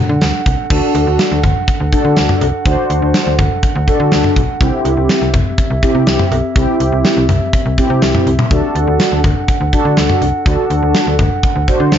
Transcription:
Already playing: glass harmonica D4 A4 F#5
0.09 fm bass D3
0.21 fm bass D2, snare, closed hi-hat
0.46 fm bass C2, kick, closed hi-hat
0.70 fm bass D2, analog polysynth D4 F#4 A4, glass harmonica D4 A4 F#5, kick, crash
0.95 fm bass D2, closed hi-hat, cowbell
1.07 fm bass D2
1.19 snare, closed hi-hat
1.31 fm bass D2
1.43 fm bass D2, kick, closed hi-hat, mid tom
1.68 kick, closed hi-hat
1.80 fm bass D2
1.92 analog polysynth D4 F#4 A4, kick, closed hi-hat
2.05 fm bass D3
2.16 fm bass D2, snare, closed hi-hat
2.29 mid tom
2.41 fm bass C2, closed hi-hat, cowbell
2.65 fm bass D2, analog polysynth D4 F#4 C5, kick, closed hi-hat
2.90 fm bass D2, closed hi-hat
3.02 fm bass D2
3.14 snare, closed hi-hat
3.27 fm bass D2
3.39 fm bass D2, kick, closed hi-hat, mid tom, cowbell
3.63 kick, closed hi-hat
3.75 fm bass D2
3.88 analog polysynth D4 F#4 A4, kick, closed hi-hat
4.00 fm bass D3
4.12 fm bass D2, snare, closed hi-hat
4.24 mid tom
4.36 fm bass B1, kick, closed hi-hat
4.60 fm bass C2, analog polysynth C4 E4 G4, glass harmonica C4 G4 E5, kick, closed hi-hat
4.85 fm bass C2, closed hi-hat, cowbell
4.97 fm bass C2
5.09 snare, closed hi-hat
5.22 fm bass C2
5.34 fm bass C2, kick, closed hi-hat, mid tom
5.58 kick, closed hi-hat
5.70 fm bass C2
5.83 analog polysynth C4 E4 G4, kick, closed hi-hat
5.95 fm bass C3
6.07 fm bass C2, snare, closed hi-hat
6.19 mid tom
6.31 fm bass B1, closed hi-hat, cowbell
6.56 fm bass C2, analog polysynth C4 E4 G4, kick, closed hi-hat
6.80 fm bass C2, closed hi-hat
6.92 fm bass C2
7.04 snare, closed hi-hat
7.17 fm bass C2
7.29 fm bass C2, closed hi-hat, mid tom
7.53 kick, closed hi-hat
7.65 fm bass C2
7.78 analog polysynth C4 E4 G4, kick, closed hi-hat
7.90 fm bass C3
8.02 fm bass C2, snare, closed hi-hat
8.15 mid tom
8.27 fm bass C2, closed hi-hat
8.39 mid tom
8.51 fm bass D2, glass harmonica D4 A4 F#5, analog polysynth D4 F#4 A4, kick, closed hi-hat
8.75 fm bass D2, closed hi-hat
8.87 fm bass D2
9.00 snare, closed hi-hat
9.12 fm bass D2
9.24 fm bass D2, kick, closed hi-hat, mid tom, cowbell
9.48 kick, closed hi-hat
9.61 fm bass D2
9.73 analog polysynth D4 F#4 A4, kick, closed hi-hat
9.85 fm bass D3
9.97 fm bass D2, snare, closed hi-hat
10.10 mid tom
10.21 fm bass C2, closed hi-hat
10.46 fm bass D2, analog polysynth D4 F#4 A4, kick, closed hi-hat
10.70 fm bass D2, closed hi-hat
10.83 fm bass D2
10.95 snare, closed hi-hat
11.07 fm bass D2
11.19 fm bass D2, kick, closed hi-hat, mid tom, cowbell
11.43 kick, closed hi-hat
11.56 fm bass D2
11.68 analog polysynth D4 F#4 C5, kick, closed hi-hat
11.80 fm bass D3
11.92 fm bass D2, snare, closed hi-hat

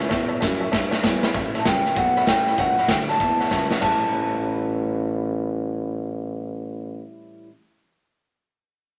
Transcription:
Already playing: tuba C#2, clean electric guitar E4
0.00 steel-string acoustic guitar C#4 E4
0.09 tuba E2, steel-string acoustic guitar A2, honky-tonk piano C#5 E5 A5, kick, snare
0.28 honky-tonk piano C#5 E5 A5
0.40 tuba F#2, steel-string acoustic guitar E3 G3 C#4 E4, honky-tonk piano C#5 E5 A5, kick, snare, hi-hat pedal
0.60 steel-string acoustic guitar C#4 E4, honky-tonk piano C#5 E5 A5
0.72 steel-string acoustic guitar E2, tuba G2, honky-tonk piano C#5 E5 A5, kick, snare
0.91 honky-tonk piano C#5 E5 A5, snare
1.03 tuba E2, steel-string acoustic guitar E3 G3 C#4 E4, honky-tonk piano C#5 E5 A5, kick, snare, hi-hat pedal
1.23 steel-string acoustic guitar C#4 E4, honky-tonk piano C#5 E5 B5, snare
1.34 tuba A1, steel-string acoustic guitar A2, honky-tonk piano C#5 E5 A5, clean electric guitar E5, kick, snare
1.54 honky-tonk piano C#5 E5 A5, snare
1.59 clean electric guitar A5
1.65 tuba C#2, steel-string acoustic guitar E3 G3 C#4 E4, honky-tonk piano C#5 E5 A5, clean electric guitar G5, kick, snare, hi-hat pedal
1.85 steel-string acoustic guitar C#4 E4, honky-tonk piano C#5 E5 A5, snare
1.96 tuba B1, steel-string acoustic guitar E2, honky-tonk piano C#5 E5 A5, clean electric guitar F#5, kick, snare
2.16 honky-tonk piano C#5 E5 B5, snare
2.27 tuba A1, steel-string acoustic guitar E3 G3 C#4 E4, honky-tonk piano C#5 E5 A5, clean electric guitar G5, kick, snare, hi-hat pedal
2.46 steel-string acoustic guitar C#4 E4, honky-tonk piano C#5 E5 B5, snare
2.58 tuba C#2, steel-string acoustic guitar A2, honky-tonk piano C#5 E5 A5, clean electric guitar F#5, kick, snare
2.77 honky-tonk piano C#5 E5 B5, snare
2.88 tuba D2, steel-string acoustic guitar E3 G3 C#4 E4, honky-tonk piano C#5 E5 A5, clean electric guitar G5, kick, snare, hi-hat pedal
3.08 honky-tonk piano C#5 E5 A5, clean electric guitar A5, snare
3.20 tuba E2, steel-string acoustic guitar E2, honky-tonk piano C#5 E5 A5, kick, snare
3.40 honky-tonk piano C#5 E5 F#5, snare
3.50 tuba C#2, steel-string acoustic guitar E3 G3 C#4 E4, honky-tonk piano C#5 E5 A5, kick, snare, hi-hat pedal
3.70 steel-string acoustic guitar C#4 E4, honky-tonk piano C#5 E5 F#5, snare
3.81 tuba A1, steel-string acoustic guitar A2 E3 G3 C#4 E4, honky-tonk piano C#5 E5 A5, clean electric guitar A5, kick, china

